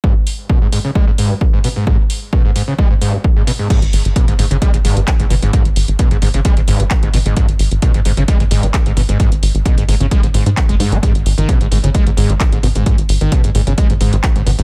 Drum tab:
CC |----------------|----------------|x---------------|----------------|
HH |--o---o---o---o-|--o---o---o---o-|xxoxxxoxxxoxxxox|xxoxxxoxxxoxxxox|
CP |----------------|----------------|------------x---|------------x---|
BD |o---o---o---o---|o---o---o---o---|o---o---o---o---|o---o---o---o---|

CC |----------------|----------------|----------------|----------------|
HH |xxoxxxoxxxoxxxox|xxoxxxoxxxoxxxox|xxoxxxoxxxoxxxox|xxoxxxoxxxoxxxox|
CP |------------x---|------------x---|------------x---|------------x---|
BD |o---o---o---o---|o---o---o---o---|o---o---o---o---|o---o---o---o---|